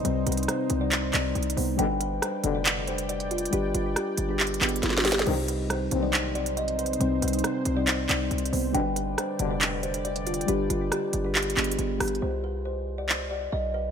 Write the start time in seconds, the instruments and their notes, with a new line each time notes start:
Already playing: synth keys C3 G3 C4 D#4, analog synth pad C4 D#4 C5
0.03 808-style bass C2, synth keys C3 G3 C4, kalimba C5, closed hi-hat
0.27 808-style bass C2, kalimba B4, closed hi-hat
0.32 synth keys C3, closed hi-hat
0.37 synth keys G3 D#4, closed hi-hat
0.43 closed hi-hat
0.48 kalimba C5, cross-stick, closed hi-hat
0.70 808-style bass C2, closed hi-hat
0.79 synth keys C3 G3 D#4, kalimba D5
0.91 kalimba C5, clap, closed hi-hat
1.13 808-style bass C2, synth keys C3 G3 D#4, kalimba D5, clap, closed hi-hat
1.35 808-style bass C2, closed hi-hat
1.43 closed hi-hat
1.50 closed hi-hat
1.56 808-style bass C2, synth keys C3 G3 B3, kalimba C5, open hi-hat
1.76 808-style bass G1, brass ensemble G2 B2 D3, synth keys G3 D4 B4, analog synth pad D5 G5, kalimba G5, closed hi-hat
2.00 kalimba B4, closed hi-hat
2.22 kalimba C5, cross-stick, closed hi-hat
2.44 808-style bass F1, brass ensemble G2 B2 D3, closed hi-hat
2.53 synth keys G3 D4 B4, kalimba D5
2.65 kalimba B4, clap, closed hi-hat
2.87 kalimba C5, closed hi-hat
2.98 closed hi-hat
3.09 kalimba D5, closed hi-hat
3.20 closed hi-hat
3.31 kalimba F4, closed hi-hat
3.38 closed hi-hat
3.46 closed hi-hat
3.51 808-style bass G1, synth keys G3 D4 B4, kalimba G4, closed hi-hat
3.74 808-style bass G1, kalimba F4, closed hi-hat
3.83 synth keys G3 D4 B4
3.96 kalimba G4, cross-stick, closed hi-hat
4.17 808-style bass G1, closed hi-hat
4.28 synth keys G3 D4 B4, kalimba G#4
4.40 kalimba G4, clap, closed hi-hat
4.47 closed hi-hat
4.54 closed hi-hat
4.61 808-style bass G1, synth keys B3 D4 B4, kalimba G#4, clap, closed hi-hat
4.69 closed hi-hat
4.76 closed hi-hat
4.83 808-style bass G1, snare, closed hi-hat
4.90 snare
4.98 snare
5.03 synth keys G3 D4 B4, kalimba G4, snare, closed hi-hat, open hi-hat
5.12 snare, closed hi-hat
5.19 snare, closed hi-hat
5.26 808-style bass C2, brass ensemble G2 C3 D#3, synth keys C3 G3 D#4, analog synth pad C4 D#4 C5, kalimba C5, crash
5.48 kalimba B4, closed hi-hat
5.70 kalimba C5, cross-stick, closed hi-hat
5.91 808-style bass B1, brass ensemble D#2 G2 C4, closed hi-hat
6.01 synth keys G3 C4 D#4, kalimba D5
6.13 kalimba C5, clap, closed hi-hat
6.35 kalimba D5, closed hi-hat
6.46 closed hi-hat
6.57 kalimba D#5, closed hi-hat
6.68 closed hi-hat
6.79 kalimba B4, closed hi-hat
6.86 closed hi-hat
6.93 closed hi-hat
6.99 808-style bass C2, synth keys C3 G3 C4, kalimba C5, closed hi-hat
7.22 808-style bass C2, kalimba B4, closed hi-hat
7.28 synth keys C3, closed hi-hat
7.33 synth keys G3 D#4, closed hi-hat
7.39 closed hi-hat
7.44 kalimba C5, cross-stick, closed hi-hat
7.65 808-style bass C2, closed hi-hat
7.75 synth keys C3 G3 D#4, kalimba D5
7.87 kalimba C5, clap, closed hi-hat
8.09 808-style bass C2, synth keys C3 G3 D#4, kalimba D5, clap, closed hi-hat
8.31 808-style bass C2, closed hi-hat
8.38 closed hi-hat
8.46 closed hi-hat
8.52 808-style bass C2, synth keys C3 G3 B3, kalimba C5, open hi-hat
8.72 808-style bass G1, brass ensemble G2 B2 D3, analog synth pad D3 D5 G5, synth keys G3 D4 B4, kalimba G5, closed hi-hat
8.96 kalimba B4, closed hi-hat
9.18 kalimba C5, cross-stick, closed hi-hat
9.39 808-style bass F1, brass ensemble G2 B2 D3, closed hi-hat
9.49 synth keys G3 D4 B4, kalimba D5
9.61 kalimba B4, clap, closed hi-hat
9.83 kalimba C5, closed hi-hat
9.94 closed hi-hat
10.05 kalimba D5, closed hi-hat
10.16 closed hi-hat
10.27 kalimba F4, closed hi-hat
10.34 closed hi-hat
10.41 closed hi-hat
10.46 808-style bass G1, synth keys G3 D4 B4, kalimba G4, closed hi-hat
10.70 808-style bass G1, kalimba F4, closed hi-hat
10.79 synth keys G3 D4 B4
10.91 kalimba G4, cross-stick, closed hi-hat
11.13 808-style bass G1, closed hi-hat
11.23 synth keys G3 D4 B4, kalimba G#4
11.35 kalimba G4, clap, closed hi-hat
11.42 closed hi-hat
11.50 closed hi-hat
11.56 808-style bass G1, synth keys B3 D4 B4, kalimba G#4, clap, closed hi-hat
11.64 closed hi-hat
11.71 closed hi-hat
11.79 808-style bass G1, closed hi-hat
11.98 808-style bass G1, synth keys G3 D4 B4, kalimba G4, cross-stick, closed hi-hat, open hi-hat
12.08 closed hi-hat
12.15 closed hi-hat
12.22 808-style bass C2, kalimba C5
12.44 kalimba B4
12.65 kalimba C5
12.98 kalimba D5
13.09 kalimba C5, clap
13.31 kalimba D5
13.52 808-style bass B1, kalimba D#5
13.74 kalimba B4